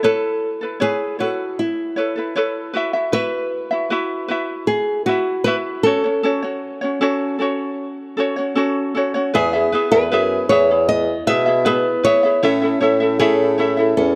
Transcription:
0.03 E4 A4 B4 C#5
0.61 E4 A4 B4
0.80 E4 G#4 B4 C#5
1.19 E4 F#4 A4 B4 C#5
1.59 E4
1.96 E4 A4 B4 C#5
2.16 E4 A4 B4
2.36 E4 A4 B4 C#5
2.74 E4 F#4 B4 E5
2.93 E4 F#4 E5
3.12 E4 F#4 B4 E5
3.71 E4 F#4 E5
3.90 E4 F#4 B4 E5
4.28 E4 F#4 B4 E5
4.67 G#4
5.06 E4 F#4 B4 E5
5.44 E4 F#4 B4 E5
5.83 C#4 F#4 A4 C#5
6.04 C#4 C#5
6.23 C#4 F#4 A4 C#5
6.42 C#4 F#4 C#5
6.81 C#4 F#4 C#5
7.01 C#4 F#4 A4 C#5
7.39 C#4 F#4 A4 C#5
8.17 C#4 F#4 A4 C#5
8.36 C#4 F#4 C#5
8.55 C#4 F#4 A4 C#5
8.95 C#4 F#4 A4 C#5
9.14 C#4 F#4 C#5
9.34 E2 B3 E4 G#4 B4 E5
9.53 E4 G#4 E5
9.72 B3 E4 G#4 B4 E5
9.91 E2 E4 G#4 B4 E5
10.11 F#2 E4 G#4 B4 E5
10.49 E2 E4 G#4 B4 C#5 E5
10.71 E4 G#4
10.89 B3 D#5
11.27 B2 E4 G#4 B4 E5
11.46 E4 G#4 E5
11.65 B3 E4 G#4 B4 E5
12.03 E4 G#4 B4 C#5 E5
12.23 E4 G#4 E5
12.43 A2 C#4 E4 A4 C#5 E5
12.62 E4 A4 E5
12.81 A2 C#4 E4 A4 C#5 E5
13.00 E4 A4 E5
13.19 E4 G#4 A4 C#5 E5
13.58 E4 A4 C#5 E5
13.77 E4 A4 E5
13.97 E2 C#4 A4

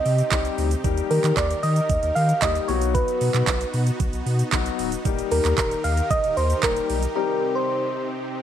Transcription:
Already playing: C3 C4 D#4 G4 D#5
0.05 C3, open hi-hat, shaker
0.18 closed hi-hat, shaker
0.31 C2 G3 C4 D#4 G4, kick, clap, closed hi-hat, shaker
0.45 closed hi-hat, shaker
0.58 D2, open hi-hat, shaker
0.71 closed hi-hat, shaker
0.84 D#2 D#3 G3 A#3 D#4 G4 A#4, kick, closed hi-hat, shaker
0.98 closed hi-hat, shaker
1.11 D#3 A#4, open hi-hat, shaker
1.24 D#3, clap, closed hi-hat, shaker
1.37 D#2 D5, kick, clap, closed hi-hat, shaker
1.51 closed hi-hat, shaker
1.63 D#3 D#5, open hi-hat, shaker
1.76 closed hi-hat, shaker
1.90 D#2, kick, closed hi-hat, shaker
2.03 D#2, closed hi-hat, shaker
2.15 D#3 F5, open hi-hat, shaker
2.29 closed hi-hat, shaker
2.42 D#2 G3 A#3 D#4 G4 D#5, kick, clap, closed hi-hat, shaker
2.55 closed hi-hat, shaker
2.68 B1 F#3 B3 D#4 F#4 C#5, open hi-hat, shaker
2.81 closed hi-hat, shaker
2.94 B4, kick, closed hi-hat, shaker
3.08 closed hi-hat, shaker
3.21 B2, open hi-hat, shaker
3.34 B2, clap, closed hi-hat, shaker
3.47 B1, kick, clap, closed hi-hat, shaker
3.61 closed hi-hat, shaker
3.74 B2, open hi-hat, shaker
3.87 closed hi-hat, shaker
4.00 B1, kick, closed hi-hat, shaker
4.13 B1, closed hi-hat, shaker
4.26 B2, open hi-hat, shaker
4.39 closed hi-hat, shaker
4.52 B1 F#3 B3 D#4 F#4, kick, clap, closed hi-hat, shaker
4.66 closed hi-hat, shaker
4.79 D1, open hi-hat, shaker
4.92 closed hi-hat, shaker
5.05 D#1 D#3 G3 A#3 D#4 G4 A#4, kick, closed hi-hat, shaker
5.19 closed hi-hat, shaker
5.32 D#2 A#4, open hi-hat, shaker
5.45 D#2, clap, closed hi-hat, shaker
5.58 D#1 A#4, kick, clap, closed hi-hat, shaker
5.71 closed hi-hat, shaker
5.84 D#2 F5, open hi-hat, shaker
5.97 closed hi-hat, shaker
6.11 D#1 D#5, kick, closed hi-hat, shaker
6.24 D#1, closed hi-hat, shaker
6.37 D#2 C5, open hi-hat, shaker
6.50 closed hi-hat, shaker
6.63 D#1 G3 A#3 D#4 G4 A#4, kick, clap, closed hi-hat, shaker
6.76 closed hi-hat, shaker
6.90 B1, open hi-hat, shaker
7.03 closed hi-hat, shaker
7.15 C3 G3 C4 D#4 G4 A#4
7.55 C5

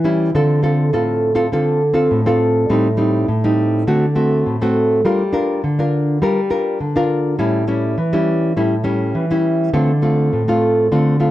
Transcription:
Already playing: E3
0.04 G3 C#4 E4
0.35 D3 C4 F4 A4
0.63 C4 F4 A4
0.93 A2 C4 F4 A4
1.35 C4 F4 A4
1.52 D3 C4 F4 A4
1.94 C4 F4 A4
2.11 A2
2.26 C4 F4 A4
2.70 A2 G3 C4 D#4
2.97 G3 C4 D#4
3.28 A2
3.44 G3 C4 D#4
3.87 D3 A3 C4 F#4
4.16 A3 C4 F#4
4.46 A2
4.62 A3 C4 F#4
5.05 G3 D4 F4 A#4
5.33 D4 F4 A#4
5.64 D3
5.79 D4 F4 A#4
6.22 G3 D4 F4 A#4
6.50 D4 F4 A#4
6.80 D3
6.96 D4 F4 A#4
7.39 A2 G3 C#4 E4
7.67 G3 C#4 E4
7.98 E3
8.13 G3 C#4 E4
8.56 A2 G3 C#4 E4
8.84 G3 C#4 E4
9.15 E3
9.31 G3 C#4 E4
9.74 D3 A3 C4 F4
10.02 A3 C4 F4
10.33 A2
10.48 A3 C4 F4
10.92 D3 A3 C4 F4
11.20 A3 C4 F4

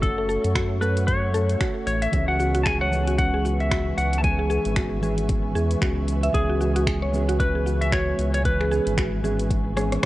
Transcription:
Already playing: F#1 A4 C#5 E5 C#6
0.01 A3 C#4 F#4 A4, kick, closed hi-hat, shaker
0.18 A4
0.29 A4, shaker
0.44 F#2, closed hi-hat, shaker
0.55 F#4, finger snap, kick, closed hi-hat, shaker
0.81 A3 C#4 F#4 A4 B4, shaker
0.97 closed hi-hat, shaker
1.07 C#5, kick, closed hi-hat, shaker
1.32 A3 C#4 A4, closed hi-hat, shaker
1.36 F#4
1.49 closed hi-hat, shaker
1.61 F#4, finger snap, kick, closed hi-hat, shaker
1.87 A1 C#5, closed hi-hat, shaker
2.02 E5, closed hi-hat, shaker
2.11 C#2 E3 G#3 B3 C#4 B4 G#5, kick, closed hi-hat, shaker
2.15 G#4
2.28 F#4 F#5
2.40 F#4, shaker
2.55 F#4, closed hi-hat, shaker
2.63 G#4 G#5 A5, finger snap, kick, closed hi-hat, shaker
2.81 C#5 F#5
2.90 E3 G#3 B3 C#4 G#4, shaker
3.07 F#4, closed hi-hat, shaker
3.18 C#4 F#5, kick, closed hi-hat, shaker
3.34 G#4
3.45 F#4, shaker
3.60 E5, closed hi-hat, shaker
3.71 F#4, finger snap, kick, closed hi-hat, shaker
3.98 C#2 F#5, closed hi-hat, shaker
4.13 closed hi-hat, shaker
4.18 A5
4.22 E3 G#3 B3 C#4 G#4 G#5, kick, closed hi-hat, shaker
4.39 G#4
4.50 G#4, shaker
4.65 G#1, closed hi-hat, shaker
4.76 F#4, finger snap, kick, closed hi-hat, shaker
5.01 E3 G#3 B3 C#4 G#4, shaker
5.18 closed hi-hat, shaker
5.29 kick, closed hi-hat, shaker
5.55 E2 G#4, shaker
5.71 closed hi-hat, shaker
5.82 C#2 F#4, finger snap, kick, closed hi-hat, shaker
6.08 closed hi-hat, shaker
6.23 E5, closed hi-hat, shaker
6.32 C#2 E3 G#3 B3 C#4 G#4, kick, closed hi-hat, shaker
6.50 F#4
6.61 F#4, shaker
6.76 F#4, closed hi-hat, shaker
6.87 G#4, finger snap, kick, closed hi-hat, shaker
7.02 C#5
7.11 E3 G#3 B3 C#4 G#4, shaker
7.29 F#4, closed hi-hat, shaker
7.40 C#4 B4, kick, closed hi-hat, shaker
7.55 G#4
7.66 F#4, shaker
7.81 E5, closed hi-hat, shaker
7.92 F#4 C#5, finger snap, kick, closed hi-hat, shaker
8.19 C#2, closed hi-hat, shaker
8.34 C#5, closed hi-hat, shaker
8.43 E3 G#3 B3 C#4 G#4 B4, kick, closed hi-hat, shaker
8.60 G#4, finger snap
8.71 G#4, shaker
8.87 G#1, closed hi-hat, shaker
8.98 F#4, finger snap, kick, closed hi-hat, shaker
9.23 E3 G#3 B3 C#4 G#4, shaker
9.39 closed hi-hat, shaker
9.50 kick, closed hi-hat, shaker
9.75 E3 G#3 B3 C#4 G#4, cross-stick, closed hi-hat, shaker
9.92 cross-stick, closed hi-hat, shaker

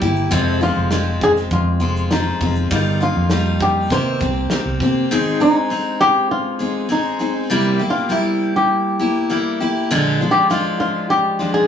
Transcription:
0.02 G1 A#3 E4 G4, kick, shaker
0.16 shaker
0.31 F1 F2 C3 F3 G#3 C4 F4, kick, shaker
0.61 F3 G#3 C4 F4, shaker
0.76 F1
0.91 F3 G#3 C4 F4, snare, shaker
1.21 G#4, kick, shaker
1.37 snare, shaker
1.51 F2 F4, kick, shaker
1.80 F1 F3 G#3 C4 F4, shaker
1.96 shaker
2.10 F3 G#3 C4 D#4 F4, snare, shaker
2.40 F1 F3 G#3 C4 F4, kick, shaker
2.56 shaker
2.71 G1 G3 A#3 D#4 F4, kick, shaker
3.00 A#3 D#4 F4, shaker
3.16 F2
3.30 G3 A#3 D#4 F4, snare, shaker
3.59 G4, kick, shaker
3.90 C3 D#3 A#3 C4 G4 C5, kick, shaker
4.20 C2 A#3 C4 G4, kick, shaker
4.50 D#3 A#3 C4 G4, snare, shaker
4.65 C2
4.80 C3 A#3 C4 G4, kick, shaker
5.11 G#2 D#3 G#3 C4 D#4 G#4
5.40 G#3 C4 D#4 G#4
5.70 G#3 C4 D#4
6.01 G4
6.31 F4
6.59 G#3 C4 D#4 G#4
6.89 G#3 C4 D#4 G#4
7.19 G#3 C4 D#4 G#4
7.50 C3 G3 A#3 E4 G4
7.79 A#3 E4 G4
7.90 F4
8.09 G3 A#3 E4 G4
8.56 G4
8.99 A#3 E4 G4
9.30 G3 A#3 E4 G4
9.60 A#3 E4 G4
9.91 A#2 D3 F3 G#3 D4 F4
10.21 F3 G#3 D4 F4
10.31 G4
10.50 F3 G#3 D4 F4
10.80 F4
11.10 G4
11.39 F3 G#3 D4 F4
11.54 G#4

